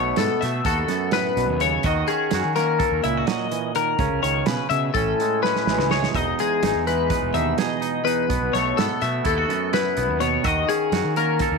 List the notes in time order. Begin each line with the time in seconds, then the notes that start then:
Already playing: B1 B2 A3 B3 C#5
0.16 G#2 B3 A4, snare, closed hi-hat
0.41 B2 A3 E5, snare, closed hi-hat
0.65 D#2 F#4 A4, kick, closed hi-hat
0.88 F#2 B3, snare, closed hi-hat
1.11 A2 B4, snare, closed hi-hat
1.37 B1 B2, closed hi-hat
1.50 D#2
1.60 C#3 C#5, closed hi-hat
1.83 D#2 D#3 F#4 D#5, kick, closed hi-hat
2.07 C#4 G#4, closed hi-hat
2.31 F#2 F#4, snare, closed hi-hat
2.44 D#3
2.56 A#3 C#4 A#4, snare, closed hi-hat
2.79 A4, kick, closed hi-hat
2.91 D#2
3.04 C#2 A#2 E4 E5, closed hi-hat
3.17 F#4
3.26 F#3 D#5, snare, closed hi-hat
3.51 E3, closed hi-hat
3.75 D#3 A#4, closed hi-hat
3.99 C#2 C#3 C#4, kick, closed hi-hat
4.12 C#2
4.23 C#2 D#3 C#5, closed hi-hat
4.46 B2 C#3 B4, snare, closed hi-hat
4.70 B2 C#3 E5, closed hi-hat
4.94 A1 A2 C#4 A4, kick, closed hi-hat
5.20 G#3, closed hi-hat
5.43 C#4 B4, snare
5.56 snare
5.67 A1 E3 G#3, snare
5.78 C#2, snare
5.91 G#4 C#5, snare
6.03 snare
6.14 E1 E2 D#4 D#5, kick, closed hi-hat
6.39 G#3 G#4, closed hi-hat
6.62 G#1 D#4, snare, closed hi-hat
6.75 E2
6.87 E3 G#3 B4, closed hi-hat
7.10 B4, kick, closed hi-hat
7.22 E1
7.33 D#2 B2 D#4 E5, closed hi-hat
7.58 G#4 D#5, snare, closed hi-hat
7.81 D#4, closed hi-hat
8.04 E2 D#4 B4, closed hi-hat
8.29 B1 B2 B3, kick, closed hi-hat
8.41 B1
8.53 B1 A3 C#5, snare, closed hi-hat
8.77 G#2 B3 A4, snare, closed hi-hat
9.01 B2 A3 E5, snare, closed hi-hat
9.24 D#2 E4 A4, kick, closed hi-hat
9.38 F#4
9.48 F#2 B3, closed hi-hat
9.73 E4 B4, snare, closed hi-hat
9.97 B1 B3, closed hi-hat
10.10 D#2
10.20 B2 B3 C#5, closed hi-hat
10.43 D#2 D#3 F#4 D#5, kick, closed hi-hat
10.69 C#4 G#4, closed hi-hat
10.92 F#2 F#4, snare, closed hi-hat
11.05 D#3
11.16 A#3 C#4 A#4, closed hi-hat
11.39 A4, kick, closed hi-hat
11.51 D#2